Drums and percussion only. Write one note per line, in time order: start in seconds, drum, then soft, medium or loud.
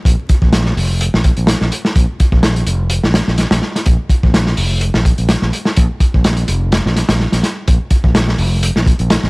0.05 kick loud
0.05 closed hi-hat medium
0.29 kick loud
0.29 closed hi-hat medium
0.42 kick loud
0.53 snare loud
0.53 closed hi-hat medium
0.66 snare soft
0.77 open hi-hat medium
1.01 closed hi-hat medium
1.14 snare medium
1.24 kick medium
1.24 closed hi-hat medium
1.37 closed hi-hat soft
1.47 snare loud
1.47 closed hi-hat loud
1.61 snare soft
1.72 closed hi-hat medium
1.85 snare medium
1.96 kick loud
1.96 closed hi-hat medium
2.20 kick medium
2.20 closed hi-hat medium
2.32 kick loud
2.43 snare loud
2.43 closed hi-hat medium
2.56 closed hi-hat soft
2.67 closed hi-hat medium
2.90 closed hi-hat medium
3.04 snare soft
3.14 snare loud
3.14 closed hi-hat medium
3.28 snare soft
3.38 snare soft
3.38 closed hi-hat medium
3.51 snare loud
3.51 closed hi-hat medium
3.62 snare soft
3.76 snare soft
3.76 closed hi-hat medium
3.86 kick loud
3.86 closed hi-hat medium
4.09 kick medium
4.09 closed hi-hat medium
4.23 kick loud
4.34 snare loud
4.34 closed hi-hat medium
4.47 snare soft
4.57 open hi-hat medium
4.81 closed hi-hat loud
4.94 snare medium
5.05 kick medium
5.05 closed hi-hat medium
5.18 closed hi-hat soft
5.29 snare loud
5.29 closed hi-hat medium
5.42 snare soft
5.53 closed hi-hat medium
5.65 snare medium
5.76 kick loud
5.76 closed hi-hat medium
6.00 kick medium
6.00 closed hi-hat medium
6.14 kick medium
6.24 snare loud
6.24 closed hi-hat medium
6.37 closed hi-hat soft
6.48 closed hi-hat medium
6.72 snare loud
6.72 closed hi-hat medium
6.86 snare soft
6.96 snare soft
6.96 closed hi-hat medium
7.09 snare loud
7.09 closed hi-hat medium
7.20 snare soft
7.32 snare soft
7.32 closed hi-hat medium
7.43 snare soft
7.43 closed hi-hat medium
7.68 kick loud
7.68 closed hi-hat medium
7.90 kick medium
7.90 closed hi-hat medium
8.04 kick loud
8.15 snare loud
8.15 closed hi-hat medium
8.28 snare soft
8.38 open hi-hat medium
8.63 closed hi-hat medium
8.76 snare soft
8.87 kick loud
8.87 closed hi-hat medium
8.99 closed hi-hat soft
9.10 snare loud
9.10 closed hi-hat loud
9.23 snare soft